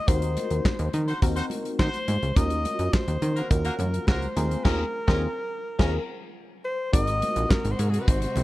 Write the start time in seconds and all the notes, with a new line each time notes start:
0.07 D#2 C4 D#4 F#4 A#4 C5, kick, closed hi-hat
0.22 closed hi-hat
0.37 closed hi-hat, muted conga
0.50 D#2, closed hi-hat
0.65 kick, snare, clap, high conga
0.79 D#2, closed hi-hat
0.93 D#3, closed hi-hat, low conga
1.08 D#4 F#4 C5, closed hi-hat
1.22 D#2 C4 D#4 F#4 A#4, kick, closed hi-hat
1.36 D#4 F#4 C5, closed hi-hat
1.50 closed hi-hat, muted conga
1.65 closed hi-hat
1.79 D#3 D#4 F#4 C5, kick, snare, clap, high conga
1.94 closed hi-hat
2.08 G#2, closed hi-hat, high conga
2.23 C#2, closed hi-hat
2.36 D#2 C#4 F4 F#4 A#4 D#5, kick, closed hi-hat, muted conga
2.50 closed hi-hat
2.65 closed hi-hat, muted conga
2.79 F#2, closed hi-hat
2.93 C5, kick, snare, clap, high conga
3.08 D#2, closed hi-hat
3.22 D#3, closed hi-hat, low conga
3.36 A#3 F#4 A#4, closed hi-hat
3.50 D#2 C#4 F4 F#4 A#4, kick, closed hi-hat
3.65 A#3 F#4 A#4, closed hi-hat
3.79 F#2, closed hi-hat, muted conga, low conga
3.94 closed hi-hat
4.07 C#2 A#3 F#4 A#4 C5, kick, snare, clap, high conga
4.22 closed hi-hat
4.36 D#2 C4 F4 G#4 A#4, closed hi-hat, high conga
4.51 closed hi-hat
4.64 D#2 C4 C#4 F4 G#4 A#4, kick, snare, crash
5.08 D#2 C4 C#4 F4 G#4 A#4, kick, snare
5.79 D#2 C4 C#4 F4 G#4 A#4, kick, snare, crash
5.86 A#4
6.65 C5
6.92 G#1 C3 G#3 C4 D#4 F#4 A#4 D#5, kick, closed hi-hat, muted conga
7.07 closed hi-hat
7.22 closed hi-hat, muted conga
7.36 A#1, closed hi-hat
7.51 A#4, kick, snare, clap, high conga
7.65 G#1, closed hi-hat
7.72 C5
7.79 G#2 A#4, closed hi-hat
7.90 G#4, closed hi-hat
7.99 A#4 B4
8.08 G#1 C5, kick, closed hi-hat
8.22 closed hi-hat
8.36 C2, closed hi-hat, muted conga, low conga